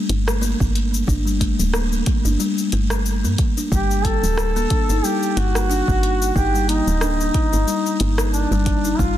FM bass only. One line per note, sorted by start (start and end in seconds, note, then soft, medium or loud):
0.10 0.55 G1 loud
0.61 1.04 G1 medium
1.08 1.54 G1 medium
1.59 2.03 D1 medium
2.25 2.37 G1 medium
2.73 3.25 G1 medium
3.24 3.36 G2 loud
3.72 4.17 G1 medium
4.23 4.66 D1 loud
4.90 5.01 G1 medium
5.37 5.82 G1 loud
5.88 6.31 G1 medium
6.36 6.81 G1 loud
6.87 7.30 D1 medium
7.53 7.65 G1 medium
8.01 8.46 G1 loud
8.51 8.95 G1 medium
8.99 9.18 G1 loud